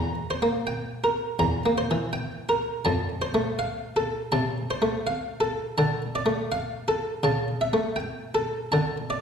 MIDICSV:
0, 0, Header, 1, 2, 480
1, 0, Start_track
1, 0, Tempo, 730816
1, 1869, Time_signature, 4, 2, 24, 8
1, 3787, Tempo, 740741
1, 6020, End_track
2, 0, Start_track
2, 0, Title_t, "Harpsichord"
2, 0, Program_c, 0, 6
2, 0, Note_on_c, 0, 40, 53
2, 0, Note_on_c, 0, 82, 65
2, 95, Note_off_c, 0, 40, 0
2, 196, Note_off_c, 0, 82, 0
2, 200, Note_on_c, 0, 72, 45
2, 278, Note_on_c, 0, 58, 40
2, 439, Note_on_c, 0, 79, 44
2, 443, Note_off_c, 0, 58, 0
2, 448, Note_off_c, 0, 72, 0
2, 682, Note_on_c, 0, 70, 47
2, 688, Note_off_c, 0, 79, 0
2, 915, Note_on_c, 0, 40, 49
2, 916, Note_on_c, 0, 82, 50
2, 929, Note_off_c, 0, 70, 0
2, 1069, Note_off_c, 0, 40, 0
2, 1088, Note_on_c, 0, 58, 45
2, 1166, Note_off_c, 0, 82, 0
2, 1167, Note_on_c, 0, 72, 45
2, 1248, Note_off_c, 0, 58, 0
2, 1255, Note_on_c, 0, 52, 43
2, 1399, Note_on_c, 0, 79, 45
2, 1411, Note_off_c, 0, 52, 0
2, 1411, Note_off_c, 0, 72, 0
2, 1636, Note_on_c, 0, 70, 46
2, 1646, Note_off_c, 0, 79, 0
2, 1871, Note_on_c, 0, 81, 70
2, 1872, Note_off_c, 0, 70, 0
2, 1877, Note_on_c, 0, 41, 58
2, 2028, Note_off_c, 0, 41, 0
2, 2113, Note_on_c, 0, 72, 48
2, 2121, Note_off_c, 0, 81, 0
2, 2197, Note_on_c, 0, 57, 45
2, 2358, Note_on_c, 0, 77, 48
2, 2359, Note_off_c, 0, 57, 0
2, 2361, Note_off_c, 0, 72, 0
2, 2603, Note_off_c, 0, 77, 0
2, 2604, Note_on_c, 0, 69, 53
2, 2837, Note_on_c, 0, 81, 55
2, 2841, Note_on_c, 0, 48, 48
2, 2848, Note_off_c, 0, 69, 0
2, 3003, Note_off_c, 0, 48, 0
2, 3086, Note_off_c, 0, 81, 0
2, 3091, Note_on_c, 0, 72, 49
2, 3166, Note_on_c, 0, 57, 44
2, 3325, Note_off_c, 0, 57, 0
2, 3328, Note_on_c, 0, 77, 50
2, 3332, Note_off_c, 0, 72, 0
2, 3549, Note_on_c, 0, 69, 46
2, 3570, Note_off_c, 0, 77, 0
2, 3789, Note_off_c, 0, 69, 0
2, 3795, Note_on_c, 0, 81, 76
2, 3799, Note_on_c, 0, 50, 60
2, 3947, Note_off_c, 0, 50, 0
2, 4038, Note_on_c, 0, 74, 47
2, 4042, Note_off_c, 0, 81, 0
2, 4107, Note_on_c, 0, 57, 45
2, 4274, Note_on_c, 0, 77, 50
2, 4275, Note_off_c, 0, 57, 0
2, 4285, Note_off_c, 0, 74, 0
2, 4510, Note_on_c, 0, 69, 50
2, 4522, Note_off_c, 0, 77, 0
2, 4739, Note_on_c, 0, 49, 60
2, 4745, Note_off_c, 0, 69, 0
2, 4745, Note_on_c, 0, 81, 70
2, 4895, Note_off_c, 0, 49, 0
2, 4984, Note_on_c, 0, 76, 53
2, 4994, Note_off_c, 0, 81, 0
2, 5062, Note_on_c, 0, 57, 44
2, 5210, Note_on_c, 0, 79, 48
2, 5228, Note_off_c, 0, 57, 0
2, 5233, Note_off_c, 0, 76, 0
2, 5459, Note_on_c, 0, 69, 48
2, 5466, Note_off_c, 0, 79, 0
2, 5700, Note_off_c, 0, 69, 0
2, 5701, Note_on_c, 0, 81, 73
2, 5708, Note_on_c, 0, 50, 56
2, 5862, Note_off_c, 0, 50, 0
2, 5949, Note_on_c, 0, 74, 49
2, 5957, Note_off_c, 0, 81, 0
2, 6020, Note_off_c, 0, 74, 0
2, 6020, End_track
0, 0, End_of_file